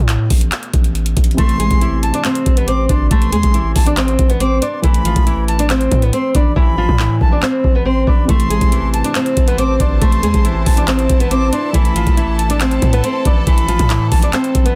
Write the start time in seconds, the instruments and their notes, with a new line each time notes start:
Already playing: grand piano B2 E3 A3 B3
0.00 808-style bass A2
0.09 clap, closed hi-hat
0.30 808-style bass A1, kick, open hi-hat
0.41 closed hi-hat
0.52 clap, closed hi-hat
0.63 closed hi-hat
0.74 808-style bass A1, kick, closed hi-hat
0.84 closed hi-hat
0.95 closed hi-hat
1.06 closed hi-hat
1.17 808-style bass A1, kick, closed hi-hat
1.24 closed hi-hat
1.31 grand piano C3, closed hi-hat
1.37 808-style bass A1, grand piano E3 A3, nylon-string guitar A3 A4, flute C6, kick, closed hi-hat
1.43 grand piano C4
1.49 closed hi-hat
1.59 nylon-string guitar G#3 G#4, closed hi-hat
1.71 808-style bass A1, kick, closed hi-hat
1.81 nylon-string guitar E3 E4, closed hi-hat
2.03 flute A5, closed hi-hat
2.14 nylon-string guitar D4 D5, closed hi-hat
2.25 nylon-string guitar C4 C5, clap, closed hi-hat
2.35 closed hi-hat
2.46 808-style bass A1, kick, closed hi-hat
2.57 nylon-string guitar B3 B4, closed hi-hat
2.68 nylon-string guitar C4 C5, flute D6, closed hi-hat
2.89 808-style bass G#1, nylon-string guitar D4 D5, flute C6, kick, closed hi-hat
3.11 808-style bass A1, nylon-string guitar A3 A4, flute C6, kick, closed hi-hat
3.22 closed hi-hat
3.32 808-style bass E2, nylon-string guitar G#3 G#4, closed hi-hat
3.43 808-style bass A1, kick, closed hi-hat
3.54 nylon-string guitar E3 E4, closed hi-hat
3.76 808-style bass A1, flute A5, kick, open hi-hat
3.86 nylon-string guitar D4 D5, closed hi-hat
3.97 nylon-string guitar C4 C5, clap, closed hi-hat
4.08 closed hi-hat
4.19 808-style bass A1, kick, closed hi-hat
4.30 nylon-string guitar B3 B4, closed hi-hat
4.40 nylon-string guitar C4 C5, flute D6, closed hi-hat
4.62 nylon-string guitar D4 D5, flute C6, closed hi-hat
4.82 808-style bass A1, grand piano E3 A3, nylon-string guitar E3 E4, flute B5, kick, closed hi-hat
4.94 closed hi-hat
5.05 nylon-string guitar F3 F4, closed hi-hat
5.16 808-style bass A1, kick, closed hi-hat
5.26 nylon-string guitar E3 E4, closed hi-hat
5.48 flute A5, closed hi-hat
5.59 nylon-string guitar D4 D5, closed hi-hat
5.70 nylon-string guitar C4 C5, clap, closed hi-hat
5.81 closed hi-hat
5.92 808-style bass A2, kick, closed hi-hat
6.02 nylon-string guitar B3 B4, closed hi-hat
6.13 nylon-string guitar C4 C5, flute C6, closed hi-hat
6.35 808-style bass A1, nylon-string guitar D4 D5, flute B5, kick, closed hi-hat
6.56 808-style bass A1, nylon-string guitar E3 E4, flute B5, kick
6.78 nylon-string guitar F3 F4
6.89 808-style bass A2, kick
6.99 nylon-string guitar E3 E4, clap
7.21 808-style bass A1, flute A5, kick
7.32 nylon-string guitar D4 D5
7.42 nylon-string guitar C4 C5, clap
7.64 808-style bass A1, kick
7.75 nylon-string guitar B3 B4
7.85 nylon-string guitar C4 C5, flute C6
8.07 808-style bass A1, nylon-string guitar D4 D5, flute B5, kick
8.25 808-style bass A1, grand piano C3 E3, string section E4 C5 A5, nylon-string guitar A4, flute C6, kick, closed hi-hat
8.30 nylon-string guitar A3, grand piano A3
8.40 closed hi-hat
8.50 nylon-string guitar G#3 G#4, closed hi-hat
8.61 808-style bass A1, kick, closed hi-hat
8.72 nylon-string guitar E3 E4, closed hi-hat
8.93 flute A5, closed hi-hat
9.04 nylon-string guitar D4 D5, closed hi-hat
9.15 nylon-string guitar C4 C5, clap, closed hi-hat
9.26 closed hi-hat
9.37 808-style bass A1, kick, closed hi-hat
9.48 nylon-string guitar B3 B4, closed hi-hat
9.58 nylon-string guitar C4 C5, flute D6, closed hi-hat
9.80 808-style bass G#1, nylon-string guitar D4 D5, flute C6, kick, closed hi-hat
10.01 808-style bass A1, nylon-string guitar A3 A4, flute C6, kick, closed hi-hat
10.12 closed hi-hat
10.23 808-style bass E2, nylon-string guitar G#3 G#4, closed hi-hat
10.34 808-style bass A1, kick, closed hi-hat
10.45 nylon-string guitar E3 E4, closed hi-hat
10.66 808-style bass A1, flute A5, kick, open hi-hat
10.77 nylon-string guitar D4 D5, closed hi-hat
10.88 nylon-string guitar C4 C5, clap, closed hi-hat
10.99 closed hi-hat
11.10 808-style bass A1, kick, closed hi-hat
11.20 nylon-string guitar B3 B4, closed hi-hat
11.31 nylon-string guitar C4 C5, flute D6, closed hi-hat
11.52 nylon-string guitar D4 D5, flute C6, closed hi-hat
11.73 808-style bass A1, grand piano E3 A3, nylon-string guitar E3 E4, string section A4, flute B5, kick, closed hi-hat
11.85 closed hi-hat
11.96 nylon-string guitar F3 F4, closed hi-hat
12.07 808-style bass A1, kick, closed hi-hat
12.17 nylon-string guitar E3 E4, closed hi-hat
12.39 flute A5, closed hi-hat
12.50 nylon-string guitar D4 D5, closed hi-hat
12.61 nylon-string guitar C4 C5, clap, closed hi-hat
12.71 closed hi-hat
12.82 808-style bass A2, kick, closed hi-hat
12.93 nylon-string guitar B3 B4, closed hi-hat
13.04 nylon-string guitar C4 C5, flute C6, closed hi-hat
13.25 808-style bass A1, nylon-string guitar D4 D5, flute B5, kick, closed hi-hat
13.46 808-style bass A1, nylon-string guitar E3 E4, flute B5, kick, closed hi-hat
13.58 closed hi-hat
13.69 nylon-string guitar F3 F4, closed hi-hat
13.79 808-style bass A2, kick, closed hi-hat
13.90 nylon-string guitar E3 E4, clap, closed hi-hat
14.12 808-style bass A1, flute A5, kick, open hi-hat
14.22 nylon-string guitar D4 D5, closed hi-hat
14.33 nylon-string guitar C4 C5, clap, closed hi-hat
14.44 closed hi-hat
14.55 808-style bass A1, kick, closed hi-hat
14.66 nylon-string guitar B3 B4, closed hi-hat